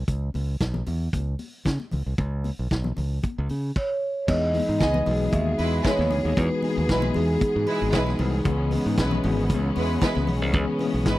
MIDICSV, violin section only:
0, 0, Header, 1, 2, 480
1, 0, Start_track
1, 0, Tempo, 522648
1, 77, Time_signature, 4, 2, 24, 8
1, 10274, End_track
2, 0, Start_track
2, 0, Title_t, "Violin section"
2, 0, Program_c, 0, 48
2, 4408, Note_on_c, 0, 68, 89
2, 4409, Note_on_c, 0, 59, 82
2, 4412, Note_on_c, 0, 75, 97
2, 4519, Note_off_c, 0, 68, 0
2, 4520, Note_off_c, 0, 59, 0
2, 4521, Note_off_c, 0, 75, 0
2, 5123, Note_on_c, 0, 56, 87
2, 5124, Note_on_c, 0, 64, 83
2, 5127, Note_on_c, 0, 71, 99
2, 5235, Note_off_c, 0, 56, 0
2, 5236, Note_off_c, 0, 64, 0
2, 5238, Note_off_c, 0, 71, 0
2, 5366, Note_on_c, 0, 71, 101
2, 5370, Note_on_c, 0, 56, 91
2, 5370, Note_on_c, 0, 64, 83
2, 5573, Note_off_c, 0, 71, 0
2, 5575, Note_off_c, 0, 56, 0
2, 5575, Note_off_c, 0, 64, 0
2, 6333, Note_on_c, 0, 56, 88
2, 6338, Note_on_c, 0, 71, 92
2, 6339, Note_on_c, 0, 64, 88
2, 6440, Note_off_c, 0, 56, 0
2, 6443, Note_off_c, 0, 64, 0
2, 6443, Note_off_c, 0, 71, 0
2, 7045, Note_on_c, 0, 71, 96
2, 7046, Note_on_c, 0, 64, 86
2, 7047, Note_on_c, 0, 56, 90
2, 7154, Note_off_c, 0, 71, 0
2, 7155, Note_off_c, 0, 64, 0
2, 7156, Note_off_c, 0, 56, 0
2, 7286, Note_on_c, 0, 64, 93
2, 7289, Note_on_c, 0, 56, 100
2, 7289, Note_on_c, 0, 71, 100
2, 7491, Note_off_c, 0, 64, 0
2, 7492, Note_off_c, 0, 56, 0
2, 7492, Note_off_c, 0, 71, 0
2, 8246, Note_on_c, 0, 56, 78
2, 8250, Note_on_c, 0, 71, 99
2, 8253, Note_on_c, 0, 64, 88
2, 8353, Note_off_c, 0, 56, 0
2, 8355, Note_off_c, 0, 71, 0
2, 8357, Note_off_c, 0, 64, 0
2, 8970, Note_on_c, 0, 71, 96
2, 8975, Note_on_c, 0, 64, 81
2, 8977, Note_on_c, 0, 56, 87
2, 9074, Note_off_c, 0, 71, 0
2, 9077, Note_off_c, 0, 64, 0
2, 9078, Note_off_c, 0, 56, 0
2, 9205, Note_on_c, 0, 56, 94
2, 9205, Note_on_c, 0, 71, 115
2, 9209, Note_on_c, 0, 64, 91
2, 9406, Note_off_c, 0, 56, 0
2, 9406, Note_off_c, 0, 71, 0
2, 9408, Note_off_c, 0, 64, 0
2, 10167, Note_on_c, 0, 56, 77
2, 10171, Note_on_c, 0, 64, 81
2, 10172, Note_on_c, 0, 71, 98
2, 10270, Note_off_c, 0, 56, 0
2, 10272, Note_off_c, 0, 64, 0
2, 10273, Note_off_c, 0, 71, 0
2, 10274, End_track
0, 0, End_of_file